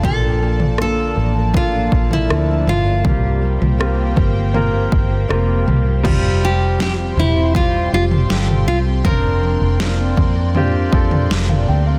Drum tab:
CC |----------------|----------------|x---------------|----------------|
SD |----r-------r---|----r-------r---|----o-------o---|----o-------o---|
FT |o--o----o--o--o-|o--o--o-o-----o-|o-----o-o--o-o--|o-----o-o--o-o--|
BD |o-------o-o-----|o-----o---o-----|o-------o-------|o-----o---o-----|